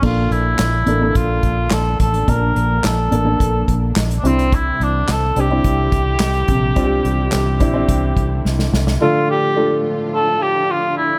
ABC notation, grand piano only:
X:1
M:4/4
L:1/16
Q:1/4=107
K:Bblyd
V:1 name="Grand piano"
[B,DA]4 z2 [B,DA] [B,DA]6 z3 | [B,Da]4 z2 [B,DA] [B,DA]6 z [CDE]2- | [CDE]4 z2 [CDG] [CDE]6 z3 | [CDFG]4 z2 [CDE] [CDE]6 z3 |
[A,DFA]3 z [A,DFA]6 z6 |]
V:2 name="Grand piano" clef=bass
B,,6 z8 z2 | B,,6 z8 C,2- | C,4 z8 z2 C,2- | C,4 z12 |
D,6 z8 z2 |]